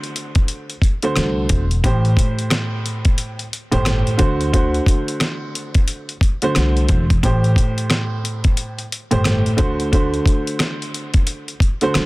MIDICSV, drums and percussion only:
0, 0, Header, 1, 2, 480
1, 0, Start_track
1, 0, Tempo, 674157
1, 1308, Time_signature, 4, 2, 24, 8
1, 8585, End_track
2, 0, Start_track
2, 0, Title_t, "Drums"
2, 25, Note_on_c, 9, 42, 38
2, 96, Note_off_c, 9, 42, 0
2, 113, Note_on_c, 9, 42, 73
2, 184, Note_off_c, 9, 42, 0
2, 249, Note_on_c, 9, 42, 55
2, 253, Note_on_c, 9, 36, 102
2, 321, Note_off_c, 9, 42, 0
2, 324, Note_off_c, 9, 36, 0
2, 343, Note_on_c, 9, 42, 94
2, 415, Note_off_c, 9, 42, 0
2, 495, Note_on_c, 9, 42, 38
2, 567, Note_off_c, 9, 42, 0
2, 581, Note_on_c, 9, 36, 103
2, 594, Note_on_c, 9, 42, 77
2, 652, Note_off_c, 9, 36, 0
2, 666, Note_off_c, 9, 42, 0
2, 730, Note_on_c, 9, 42, 55
2, 801, Note_off_c, 9, 42, 0
2, 823, Note_on_c, 9, 37, 96
2, 828, Note_on_c, 9, 38, 122
2, 829, Note_on_c, 9, 42, 95
2, 894, Note_off_c, 9, 37, 0
2, 899, Note_off_c, 9, 38, 0
2, 900, Note_off_c, 9, 42, 0
2, 1063, Note_on_c, 9, 42, 86
2, 1066, Note_on_c, 9, 36, 97
2, 1134, Note_off_c, 9, 42, 0
2, 1137, Note_off_c, 9, 36, 0
2, 1217, Note_on_c, 9, 42, 50
2, 1289, Note_off_c, 9, 42, 0
2, 1309, Note_on_c, 9, 36, 113
2, 1311, Note_on_c, 9, 42, 105
2, 1380, Note_off_c, 9, 36, 0
2, 1382, Note_off_c, 9, 42, 0
2, 1459, Note_on_c, 9, 42, 35
2, 1530, Note_off_c, 9, 42, 0
2, 1543, Note_on_c, 9, 36, 99
2, 1557, Note_on_c, 9, 42, 87
2, 1614, Note_off_c, 9, 36, 0
2, 1628, Note_off_c, 9, 42, 0
2, 1699, Note_on_c, 9, 42, 55
2, 1770, Note_off_c, 9, 42, 0
2, 1783, Note_on_c, 9, 37, 96
2, 1787, Note_on_c, 9, 42, 95
2, 1789, Note_on_c, 9, 38, 122
2, 1854, Note_off_c, 9, 37, 0
2, 1858, Note_off_c, 9, 42, 0
2, 1860, Note_off_c, 9, 38, 0
2, 2034, Note_on_c, 9, 42, 72
2, 2105, Note_off_c, 9, 42, 0
2, 2170, Note_on_c, 9, 42, 53
2, 2173, Note_on_c, 9, 36, 102
2, 2241, Note_off_c, 9, 42, 0
2, 2245, Note_off_c, 9, 36, 0
2, 2263, Note_on_c, 9, 42, 90
2, 2334, Note_off_c, 9, 42, 0
2, 2416, Note_on_c, 9, 42, 38
2, 2487, Note_off_c, 9, 42, 0
2, 2514, Note_on_c, 9, 42, 76
2, 2585, Note_off_c, 9, 42, 0
2, 2650, Note_on_c, 9, 42, 55
2, 2721, Note_off_c, 9, 42, 0
2, 2742, Note_on_c, 9, 37, 99
2, 2748, Note_on_c, 9, 38, 122
2, 2749, Note_on_c, 9, 42, 97
2, 2814, Note_off_c, 9, 37, 0
2, 2819, Note_off_c, 9, 38, 0
2, 2820, Note_off_c, 9, 42, 0
2, 2897, Note_on_c, 9, 42, 39
2, 2968, Note_off_c, 9, 42, 0
2, 2982, Note_on_c, 9, 42, 84
2, 2986, Note_on_c, 9, 36, 98
2, 3053, Note_off_c, 9, 42, 0
2, 3057, Note_off_c, 9, 36, 0
2, 3137, Note_on_c, 9, 42, 52
2, 3209, Note_off_c, 9, 42, 0
2, 3229, Note_on_c, 9, 36, 112
2, 3231, Note_on_c, 9, 42, 106
2, 3300, Note_off_c, 9, 36, 0
2, 3302, Note_off_c, 9, 42, 0
2, 3378, Note_on_c, 9, 42, 37
2, 3449, Note_off_c, 9, 42, 0
2, 3463, Note_on_c, 9, 36, 103
2, 3476, Note_on_c, 9, 42, 86
2, 3535, Note_off_c, 9, 36, 0
2, 3548, Note_off_c, 9, 42, 0
2, 3618, Note_on_c, 9, 42, 55
2, 3689, Note_off_c, 9, 42, 0
2, 3703, Note_on_c, 9, 37, 98
2, 3707, Note_on_c, 9, 42, 95
2, 3709, Note_on_c, 9, 38, 119
2, 3774, Note_off_c, 9, 37, 0
2, 3778, Note_off_c, 9, 42, 0
2, 3780, Note_off_c, 9, 38, 0
2, 3954, Note_on_c, 9, 42, 72
2, 4025, Note_off_c, 9, 42, 0
2, 4090, Note_on_c, 9, 42, 54
2, 4094, Note_on_c, 9, 36, 100
2, 4161, Note_off_c, 9, 42, 0
2, 4165, Note_off_c, 9, 36, 0
2, 4184, Note_on_c, 9, 42, 92
2, 4255, Note_off_c, 9, 42, 0
2, 4335, Note_on_c, 9, 42, 38
2, 4406, Note_off_c, 9, 42, 0
2, 4421, Note_on_c, 9, 36, 103
2, 4435, Note_on_c, 9, 42, 78
2, 4493, Note_off_c, 9, 36, 0
2, 4506, Note_off_c, 9, 42, 0
2, 4570, Note_on_c, 9, 42, 57
2, 4641, Note_off_c, 9, 42, 0
2, 4663, Note_on_c, 9, 37, 95
2, 4669, Note_on_c, 9, 38, 121
2, 4670, Note_on_c, 9, 42, 96
2, 4735, Note_off_c, 9, 37, 0
2, 4740, Note_off_c, 9, 38, 0
2, 4741, Note_off_c, 9, 42, 0
2, 4818, Note_on_c, 9, 42, 38
2, 4889, Note_off_c, 9, 42, 0
2, 4902, Note_on_c, 9, 42, 82
2, 4906, Note_on_c, 9, 36, 99
2, 4973, Note_off_c, 9, 42, 0
2, 4978, Note_off_c, 9, 36, 0
2, 5057, Note_on_c, 9, 36, 96
2, 5057, Note_on_c, 9, 42, 51
2, 5128, Note_off_c, 9, 36, 0
2, 5128, Note_off_c, 9, 42, 0
2, 5149, Note_on_c, 9, 36, 113
2, 5151, Note_on_c, 9, 42, 107
2, 5220, Note_off_c, 9, 36, 0
2, 5222, Note_off_c, 9, 42, 0
2, 5298, Note_on_c, 9, 42, 36
2, 5369, Note_off_c, 9, 42, 0
2, 5383, Note_on_c, 9, 36, 102
2, 5397, Note_on_c, 9, 42, 87
2, 5454, Note_off_c, 9, 36, 0
2, 5468, Note_off_c, 9, 42, 0
2, 5538, Note_on_c, 9, 42, 56
2, 5609, Note_off_c, 9, 42, 0
2, 5623, Note_on_c, 9, 37, 97
2, 5627, Note_on_c, 9, 42, 93
2, 5628, Note_on_c, 9, 38, 118
2, 5694, Note_off_c, 9, 37, 0
2, 5698, Note_off_c, 9, 42, 0
2, 5699, Note_off_c, 9, 38, 0
2, 5873, Note_on_c, 9, 42, 71
2, 5945, Note_off_c, 9, 42, 0
2, 6009, Note_on_c, 9, 42, 54
2, 6013, Note_on_c, 9, 36, 103
2, 6080, Note_off_c, 9, 42, 0
2, 6084, Note_off_c, 9, 36, 0
2, 6103, Note_on_c, 9, 42, 91
2, 6174, Note_off_c, 9, 42, 0
2, 6255, Note_on_c, 9, 42, 38
2, 6326, Note_off_c, 9, 42, 0
2, 6354, Note_on_c, 9, 42, 76
2, 6425, Note_off_c, 9, 42, 0
2, 6489, Note_on_c, 9, 42, 56
2, 6560, Note_off_c, 9, 42, 0
2, 6582, Note_on_c, 9, 37, 97
2, 6587, Note_on_c, 9, 38, 121
2, 6588, Note_on_c, 9, 42, 94
2, 6653, Note_off_c, 9, 37, 0
2, 6658, Note_off_c, 9, 38, 0
2, 6659, Note_off_c, 9, 42, 0
2, 6736, Note_on_c, 9, 42, 38
2, 6807, Note_off_c, 9, 42, 0
2, 6821, Note_on_c, 9, 42, 84
2, 6826, Note_on_c, 9, 36, 97
2, 6892, Note_off_c, 9, 42, 0
2, 6897, Note_off_c, 9, 36, 0
2, 6976, Note_on_c, 9, 42, 51
2, 7047, Note_off_c, 9, 42, 0
2, 7068, Note_on_c, 9, 36, 115
2, 7070, Note_on_c, 9, 42, 106
2, 7139, Note_off_c, 9, 36, 0
2, 7141, Note_off_c, 9, 42, 0
2, 7217, Note_on_c, 9, 42, 35
2, 7288, Note_off_c, 9, 42, 0
2, 7302, Note_on_c, 9, 36, 106
2, 7315, Note_on_c, 9, 42, 84
2, 7374, Note_off_c, 9, 36, 0
2, 7386, Note_off_c, 9, 42, 0
2, 7457, Note_on_c, 9, 42, 54
2, 7528, Note_off_c, 9, 42, 0
2, 7541, Note_on_c, 9, 37, 94
2, 7545, Note_on_c, 9, 42, 96
2, 7547, Note_on_c, 9, 38, 123
2, 7612, Note_off_c, 9, 37, 0
2, 7617, Note_off_c, 9, 42, 0
2, 7618, Note_off_c, 9, 38, 0
2, 7704, Note_on_c, 9, 42, 38
2, 7776, Note_off_c, 9, 42, 0
2, 7792, Note_on_c, 9, 42, 73
2, 7864, Note_off_c, 9, 42, 0
2, 7929, Note_on_c, 9, 42, 56
2, 7933, Note_on_c, 9, 36, 102
2, 8000, Note_off_c, 9, 42, 0
2, 8004, Note_off_c, 9, 36, 0
2, 8022, Note_on_c, 9, 42, 92
2, 8094, Note_off_c, 9, 42, 0
2, 8175, Note_on_c, 9, 42, 36
2, 8246, Note_off_c, 9, 42, 0
2, 8261, Note_on_c, 9, 36, 103
2, 8274, Note_on_c, 9, 42, 75
2, 8332, Note_off_c, 9, 36, 0
2, 8345, Note_off_c, 9, 42, 0
2, 8409, Note_on_c, 9, 42, 55
2, 8481, Note_off_c, 9, 42, 0
2, 8503, Note_on_c, 9, 37, 97
2, 8508, Note_on_c, 9, 38, 118
2, 8509, Note_on_c, 9, 42, 92
2, 8574, Note_off_c, 9, 37, 0
2, 8579, Note_off_c, 9, 38, 0
2, 8580, Note_off_c, 9, 42, 0
2, 8585, End_track
0, 0, End_of_file